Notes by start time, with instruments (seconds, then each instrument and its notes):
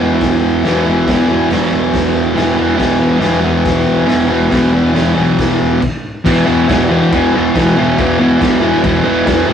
Already playing: distorted electric guitar E2
0.00 picked electric bass E1, distorted electric guitar B2 E3
0.21 picked electric bass E1, kick, snare, open hi-hat
0.42 picked electric bass E1
0.64 picked electric bass E1, distorted electric guitar E2 B2 E3, snare, open hi-hat
0.86 distorted electric guitar B2 E3
1.07 picked electric bass E1, distorted electric guitar E2 B2 E3, kick, snare, open hi-hat
1.28 distorted electric guitar B2 E3
1.49 picked electric bass E1, distorted electric guitar E2 B2 E3, snare, open hi-hat
1.72 picked electric bass B1, distorted electric guitar B2 E3
1.93 picked electric bass E2, kick, snare, open hi-hat
2.15 picked electric bass E1
2.35 picked electric bass E1, distorted electric guitar E2 B2 E3, snare, open hi-hat
2.57 picked electric bass E1, distorted electric guitar B2 E3
2.76 picked electric bass E1, distorted electric guitar E2 B2 E3, kick
2.80 snare, open hi-hat
2.99 picked electric bass E1, distorted electric guitar B2 E3
3.20 picked electric bass E1, distorted electric guitar E2 B2 E3, snare, open hi-hat
3.41 distorted electric guitar B2 E3
3.45 picked electric bass E1
3.65 picked electric bass E1, kick, snare, open hi-hat
3.88 picked electric bass E1
4.06 distorted electric guitar E2 B2 E3, snare, open hi-hat
4.11 picked electric bass E1
4.28 distorted electric guitar B2 E3
4.50 picked electric bass E1, distorted electric guitar E2 B2 E3, kick, open hi-hat
4.54 snare
4.73 distorted electric guitar B2 E3
4.93 picked electric bass E1, distorted electric guitar E2 B2 E3, snare, open hi-hat
5.15 picked electric bass B1, distorted electric guitar B2 E3
5.39 picked electric bass E2, kick, snare, open hi-hat
5.61 picked electric bass E1
5.82 kick, crash
6.25 picked electric bass E1, distorted electric guitar E2 B2 E3, kick, crash
6.45 picked electric bass E1, distorted electric guitar E2 B2 E3
6.68 picked electric bass E1, distorted electric guitar E2 B2 E3, kick, snare, crash
6.90 distorted electric guitar E2 B2 E3
7.12 picked electric bass E1, distorted electric guitar E2 B2 E3, kick, crash
7.34 picked electric bass E1, distorted electric guitar E2 B2 E3
7.55 picked electric bass E1, distorted electric guitar E2 B2 E3, kick, snare, crash
7.77 picked electric bass E1, distorted electric guitar E2 B2 E3
7.99 picked electric bass E1, distorted electric guitar E2 B2 E3, kick, crash
8.19 picked electric bass E1, distorted electric guitar E2 B2 E3
8.39 picked electric bass E1, distorted electric guitar E2 B2 E3, kick, snare, crash
8.62 distorted electric guitar E2 B2 E3
8.83 picked electric bass E1, distorted electric guitar E2 B2 E3, kick, crash
9.04 distorted electric guitar E2 B2 E3
9.09 picked electric bass E1
9.27 picked electric bass E1, distorted electric guitar E2 B2 E3, kick, snare, crash
9.47 picked electric bass E1, distorted electric guitar E2 B2 E3